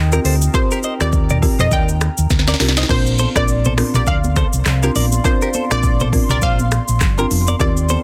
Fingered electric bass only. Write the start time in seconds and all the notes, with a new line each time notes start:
Already playing: D#2
0.24 D2
1.00 D#2
1.59 F2
1.71 D#2
2.18 D#2
2.30 D2
2.60 C2
2.89 A#1
3.36 A#1
3.95 A#1
4.07 D2
4.53 C2
4.66 C2
4.95 A#1
5.71 A#1
6.30 C2
6.42 A#1
6.89 A#1
7.01 G1
7.30 F1
7.60 D#2